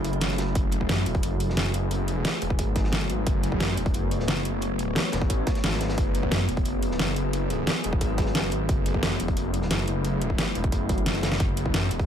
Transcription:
Already playing: detuned saw bass F#1, synth drone F#3 A3 C#4 E4
0.04 closed hi-hat
0.13 closed hi-hat
0.21 snare, closed hi-hat
0.30 snare, closed hi-hat
0.38 snare, closed hi-hat
0.55 detuned saw bass F#1, synth drone B3 G#4, kick, closed hi-hat
0.72 closed hi-hat
0.81 kick
0.89 detuned saw bass F#2, snare, closed hi-hat
1.06 detuned saw bass E1, closed hi-hat
1.14 kick, closed hi-hat
1.23 detuned saw bass F#1, closed hi-hat
1.40 closed hi-hat
1.50 snare
1.57 detuned saw bass F#1, snare, closed hi-hat
1.66 closed hi-hat
1.74 detuned saw bass F#1, closed hi-hat
1.91 closed hi-hat
2.08 closed hi-hat
2.25 snare, closed hi-hat
2.42 detuned saw bass E1, closed hi-hat
2.50 kick
2.59 detuned saw bass G#1, kick, closed hi-hat
2.76 kick, snare, closed hi-hat
2.84 snare
2.92 snare, closed hi-hat
3.01 closed hi-hat
3.10 detuned saw bass G#1, closed hi-hat
3.26 detuned saw bass F#1, synth drone C#5, kick, closed hi-hat
3.43 closed hi-hat
3.52 kick
3.60 detuned saw bass F#2, snare, closed hi-hat
3.77 detuned saw bass E1, closed hi-hat
3.86 kick, closed hi-hat
3.94 detuned saw bass F#1, closed hi-hat
4.11 closed hi-hat
4.20 snare
4.28 detuned saw bass F#1, snare, closed hi-hat
4.37 closed hi-hat
4.45 detuned saw bass F#1, closed hi-hat
4.62 closed hi-hat
4.79 closed hi-hat
4.95 snare, closed hi-hat
5.12 detuned saw bass E1, snare, closed hi-hat
5.22 kick
5.30 detuned saw bass A1, kick, closed hi-hat
5.47 kick, snare, closed hi-hat
5.55 snare, closed hi-hat
5.64 detuned saw bass G#1, snare, closed hi-hat
5.68 snare, closed hi-hat
5.72 snare, closed hi-hat
5.80 snare, closed hi-hat
5.89 snare, closed hi-hat
5.98 detuned saw bass F#1, synth drone G#4, kick, closed hi-hat
6.15 closed hi-hat
6.23 kick
6.31 detuned saw bass F#2, snare, closed hi-hat
6.49 detuned saw bass E1, closed hi-hat
6.57 kick, closed hi-hat
6.65 detuned saw bass F#1, closed hi-hat
6.83 closed hi-hat
6.91 snare
6.99 detuned saw bass F#1, snare, closed hi-hat
7.08 closed hi-hat
7.16 detuned saw bass F#1, closed hi-hat
7.33 closed hi-hat
7.50 closed hi-hat
7.67 snare, closed hi-hat
7.84 detuned saw bass E1, closed hi-hat
7.93 kick
8.01 detuned saw bass G#1, kick, closed hi-hat
8.18 kick, snare, closed hi-hat
8.26 snare
8.35 snare, closed hi-hat
8.43 closed hi-hat
8.51 detuned saw bass G#1, closed hi-hat
8.69 detuned saw bass F#1, synth drone E4, kick, closed hi-hat
8.86 closed hi-hat
8.94 kick
9.03 detuned saw bass F#2, snare, closed hi-hat
9.20 detuned saw bass E1, closed hi-hat
9.28 kick, closed hi-hat
9.37 detuned saw bass F#1, closed hi-hat
9.54 closed hi-hat
9.62 snare
9.70 detuned saw bass F#1, snare, closed hi-hat
9.79 closed hi-hat
9.87 detuned saw bass F#1, closed hi-hat
10.04 closed hi-hat
10.21 closed hi-hat
10.30 kick
10.38 snare, closed hi-hat
10.55 detuned saw bass E1, closed hi-hat
10.64 kick, closed hi-hat
10.72 detuned saw bass F#1, kick, closed hi-hat
10.89 kick, closed hi-hat
10.98 closed hi-hat
11.06 snare, closed hi-hat
11.14 snare, closed hi-hat
11.23 snare, closed hi-hat
11.32 snare
11.40 detuned saw bass F#1, synth drone F#3 A3 C#4 G#4, kick, closed hi-hat
11.57 closed hi-hat
11.66 kick
11.74 detuned saw bass F#2, snare, closed hi-hat
11.91 detuned saw bass E1, closed hi-hat
11.99 kick, closed hi-hat

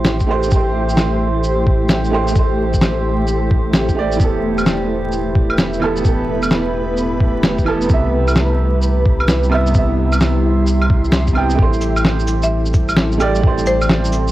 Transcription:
Already playing: sub bass A1, upright piano A3 G4 C5, ambient pad A3 E4 G4 C5, synth texture G4
0.05 snare, shaker
0.20 kick, shaker
0.27 upright piano A3 G4 C5
0.43 shaker
0.48 upright piano A3 G4, shaker
0.52 upright piano C5, kick
0.89 shaker
0.97 snare, shaker
1.43 shaker
1.67 kick
1.89 snare, shaker
2.04 shaker
2.10 upright piano A3 G4 C5
2.27 upright piano A3, shaker
2.35 upright piano G4 C5, kick, shaker
2.74 kick, shaker
2.81 snare, shaker
3.27 shaker
3.51 kick
3.73 snare, shaker
3.89 kick, shaker
3.95 upright piano A3 G4
3.99 upright piano D5
4.12 shaker
4.16 sub bass E1, upright piano E3 B3, ambient pad B3 E4 B4, kick, shaker
4.24 upright piano A4
4.58 claves, shaker
4.66 snare, shaker
5.12 shaker
5.36 kick
5.50 claves
5.58 snare, shaker
5.74 shaker
5.80 upright piano E3 B3, claves
5.84 upright piano A4
5.97 shaker
6.01 upright piano E3 B3, shaker
6.05 upright piano A4, kick
6.43 claves, shaker
6.51 snare, shaker
6.97 shaker
7.21 kick
7.43 snare, shaker
7.58 kick, shaker
7.64 upright piano E3 B3 A4, claves
7.82 shaker
7.86 upright piano C3 B3, shaker
7.90 sub bass C2, ambient pad G3 E4 B4, upright piano E5, kick
8.28 claves, shaker
8.36 snare, shaker
8.82 shaker
9.05 kick
9.20 claves
9.28 snare, shaker
9.43 shaker
9.49 upright piano C3 B3, claves
9.54 upright piano E5
9.66 upright piano C3, shaker
9.74 upright piano B3, ambient pad C6, kick, shaker
9.78 upright piano E5
10.12 claves, shaker
10.20 snare, shaker
10.67 shaker
10.81 claves
10.90 kick
11.04 shaker
11.12 snare, shaker
11.27 kick, shaker
11.33 upright piano C3 B3, claves
11.37 upright piano G5
11.50 shaker
11.55 upright piano A3 G4, ambient pad C4 E4
11.59 sub bass A1, ambient pad G3 A4, upright piano C5, kick
11.73 shaker
11.81 cabasa
11.96 claves, shaker
12.05 snare
12.20 shaker
12.27 cabasa
12.43 marimba E5, shaker
12.66 shaker
12.74 kick, cabasa
12.89 claves, shaker
12.97 snare
13.12 shaker
13.18 upright piano A3 G4 D5, cabasa, claves
13.35 shaker
13.39 upright piano A3 G4
13.44 upright piano C5, kick
13.58 shaker
13.66 marimba C5, cabasa
13.81 claves, shaker
13.89 snare
14.04 shaker
14.12 cabasa
14.28 shaker

